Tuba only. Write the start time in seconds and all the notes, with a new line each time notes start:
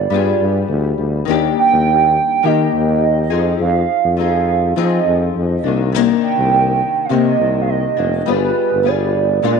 0.11 G2
0.40 G2
0.69 D2
0.98 D2
1.28 D#2
1.73 D#2
2.44 D#3
2.73 D#2
3.31 F2
3.60 F2
4.05 F2
4.77 F3
5.06 F2
5.36 F2
5.64 C2
6.39 C2
7.11 C3
7.40 C2
7.98 F1
8.27 G1
8.73 G1
9.44 A#2